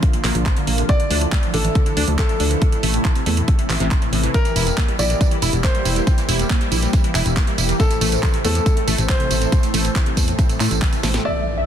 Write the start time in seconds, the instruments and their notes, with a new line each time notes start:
Already playing: grand piano E5
0.03 synth pluck A#2, kick, closed hi-hat
0.13 synth pluck A#2, closed hi-hat
0.24 fm bass A#1, synth pluck A#3, clap, open hi-hat
0.35 fm bass A#1, synth pluck A#2, closed hi-hat
0.46 synth pluck F3, kick, clap, closed hi-hat
0.56 synth pluck D3, closed hi-hat
0.67 fm bass A#1, synth pluck A#3, open hi-hat
0.78 synth pluck C3, closed hi-hat
0.89 synth pluck D3, grand piano D5, kick, closed hi-hat
1.00 synth pluck D3, closed hi-hat
1.11 fm bass D2, synth pluck D4, open hi-hat
1.21 synth pluck D2, closed hi-hat
1.32 synth pluck A3, kick, clap, closed hi-hat
1.43 synth pluck F3, closed hi-hat
1.54 fm bass A1, synth pluck D4, grand piano A4, open hi-hat
1.64 synth pluck E3, closed hi-hat
1.75 synth pluck D3, kick, closed hi-hat
1.86 synth pluck D3, closed hi-hat
1.97 fm bass D2, synth pluck D4, open hi-hat
2.08 fm bass D2, synth pluck D2, closed hi-hat
2.18 synth pluck A3, grand piano A4, kick, clap, closed hi-hat
2.29 synth pluck F3, closed hi-hat
2.40 fm bass D2, synth pluck D4, open hi-hat
2.51 synth pluck E3, closed hi-hat
2.62 synth pluck A2, kick, closed hi-hat
2.72 synth pluck A2, closed hi-hat
2.83 fm bass A1, synth pluck A3, open hi-hat
2.94 synth pluck A2, closed hi-hat
3.05 synth pluck E3, kick, clap, closed hi-hat
3.15 synth pluck C3, closed hi-hat
3.26 fm bass E2, synth pluck A3, open hi-hat
3.37 synth pluck A2, closed hi-hat
3.48 kick, closed hi-hat
3.59 synth pluck A2, closed hi-hat
3.70 fm bass A1, synth pluck E3, clap, open hi-hat
3.80 fm bass A1, synth pluck C3, closed hi-hat
3.91 kick, clap, closed hi-hat
4.02 synth pluck A2, closed hi-hat
4.13 fm bass A1, synth pluck A2, open hi-hat
4.23 synth pluck E3, closed hi-hat
4.34 synth pluck E3, grand piano A#4, kick, closed hi-hat, tambourine
4.45 synth pluck E3, closed hi-hat, tambourine
4.56 fm bass E1, synth pluck E4, open hi-hat, tambourine
4.67 synth pluck E2, closed hi-hat, tambourine
4.78 synth pluck A#3, kick, clap, closed hi-hat, tambourine
4.88 synth pluck G3, closed hi-hat
4.99 fm bass A#1, synth pluck E4, grand piano D5, open hi-hat, tambourine
5.10 synth pluck E3, closed hi-hat, tambourine
5.21 synth pluck E3, kick, closed hi-hat, tambourine
5.31 synth pluck E3, closed hi-hat
5.42 fm bass E1, synth pluck E4, open hi-hat, tambourine
5.53 fm bass E1, synth pluck E2, closed hi-hat, tambourine
5.64 synth pluck A#3, grand piano C5, kick, clap, closed hi-hat, tambourine
5.75 synth pluck G3, closed hi-hat
5.85 fm bass E1, synth pluck E4, open hi-hat, tambourine
5.96 synth pluck E3, closed hi-hat, tambourine
6.07 synth pluck E3, kick, closed hi-hat, tambourine
6.18 synth pluck E3, closed hi-hat, tambourine
6.29 fm bass E1, synth pluck E4, open hi-hat, tambourine
6.39 synth pluck E2, closed hi-hat, tambourine
6.50 synth pluck A#3, kick, clap, closed hi-hat
6.61 synth pluck G3, closed hi-hat
6.72 fm bass A#1, synth pluck E4, open hi-hat, tambourine
6.82 synth pluck E3, closed hi-hat, tambourine
6.93 synth pluck E3, kick, closed hi-hat, tambourine
7.04 synth pluck E3, closed hi-hat
7.15 fm bass E1, synth pluck E4, clap, open hi-hat, tambourine
7.26 fm bass E1, synth pluck E2, closed hi-hat, tambourine
7.37 synth pluck A#3, kick, clap, closed hi-hat, tambourine
7.47 synth pluck G3, closed hi-hat
7.58 fm bass E1, synth pluck E4, open hi-hat, tambourine
7.69 synth pluck E3, closed hi-hat, tambourine
7.80 synth pluck A2, grand piano A4, kick, closed hi-hat, tambourine
7.90 synth pluck A2, closed hi-hat, tambourine
8.01 fm bass A1, synth pluck A3, open hi-hat, tambourine
8.12 synth pluck A2, closed hi-hat, tambourine
8.23 synth pluck E3, kick, clap, closed hi-hat, tambourine
8.34 synth pluck C3, closed hi-hat
8.44 fm bass E2, synth pluck A3, grand piano A4, open hi-hat, tambourine
8.55 synth pluck A2, closed hi-hat, tambourine
8.66 kick, closed hi-hat, tambourine
8.77 synth pluck A2, closed hi-hat
8.87 fm bass A1, synth pluck A3, open hi-hat, tambourine
8.98 fm bass A1, synth pluck A2, closed hi-hat, tambourine
9.09 synth pluck E3, grand piano C5, kick, clap, closed hi-hat, tambourine
9.20 synth pluck C3, closed hi-hat
9.31 fm bass A1, synth pluck A3, open hi-hat, tambourine
9.42 synth pluck A2, closed hi-hat, tambourine
9.52 synth pluck A2, kick, closed hi-hat, tambourine
9.63 synth pluck A2, closed hi-hat, tambourine
9.74 fm bass A1, synth pluck A3, open hi-hat, tambourine
9.85 synth pluck A2, closed hi-hat, tambourine
9.95 synth pluck E3, kick, clap, closed hi-hat, tambourine
10.06 synth pluck C3, closed hi-hat
10.17 fm bass E2, synth pluck A3, kick, open hi-hat, tambourine
10.28 synth pluck A2, closed hi-hat, tambourine
10.39 synth pluck A2, kick, closed hi-hat, tambourine
10.49 synth pluck A2, closed hi-hat, tambourine
10.60 fm bass A2, synth pluck A3, clap, open hi-hat, tambourine
10.71 fm bass A1, synth pluck A2, closed hi-hat, tambourine
10.82 synth pluck E3, kick, clap, closed hi-hat
10.93 synth pluck C3, closed hi-hat, tambourine
11.03 fm bass A1, synth pluck A3, snare, open hi-hat, tambourine
11.14 synth pluck A2, snare, closed hi-hat, tambourine
11.25 grand piano D5, supersaw synth E5, digital synth lead E5, impact
11.57 supersaw synth E5, digital synth lead E5